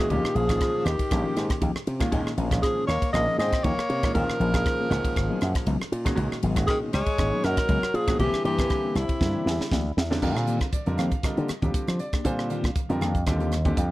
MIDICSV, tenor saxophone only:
0, 0, Header, 1, 2, 480
1, 0, Start_track
1, 0, Tempo, 506329
1, 98, Time_signature, 4, 2, 24, 8
1, 13189, End_track
2, 0, Start_track
2, 0, Title_t, "Tenor saxophone"
2, 0, Program_c, 0, 66
2, 0, Note_on_c, 0, 52, 64
2, 114, Note_on_c, 0, 51, 74
2, 128, Note_off_c, 0, 52, 0
2, 343, Note_on_c, 0, 53, 70
2, 357, Note_off_c, 0, 51, 0
2, 830, Note_on_c, 0, 51, 72
2, 844, Note_off_c, 0, 53, 0
2, 1543, Note_off_c, 0, 51, 0
2, 2508, Note_on_c, 0, 53, 62
2, 2725, Note_off_c, 0, 53, 0
2, 2753, Note_on_c, 0, 58, 77
2, 2967, Note_off_c, 0, 58, 0
2, 2990, Note_on_c, 0, 58, 72
2, 3205, Note_off_c, 0, 58, 0
2, 3228, Note_on_c, 0, 60, 78
2, 3464, Note_on_c, 0, 58, 81
2, 3478, Note_off_c, 0, 60, 0
2, 3938, Note_off_c, 0, 58, 0
2, 3957, Note_on_c, 0, 53, 71
2, 5584, Note_off_c, 0, 53, 0
2, 6348, Note_on_c, 0, 51, 70
2, 6451, Note_off_c, 0, 51, 0
2, 6580, Note_on_c, 0, 56, 92
2, 7076, Note_on_c, 0, 54, 81
2, 7090, Note_off_c, 0, 56, 0
2, 7544, Note_on_c, 0, 53, 66
2, 7558, Note_off_c, 0, 54, 0
2, 7775, Note_off_c, 0, 53, 0
2, 7797, Note_on_c, 0, 52, 74
2, 8006, Note_off_c, 0, 52, 0
2, 8028, Note_on_c, 0, 52, 70
2, 8504, Note_on_c, 0, 48, 64
2, 8518, Note_off_c, 0, 52, 0
2, 9215, Note_off_c, 0, 48, 0
2, 13189, End_track
0, 0, End_of_file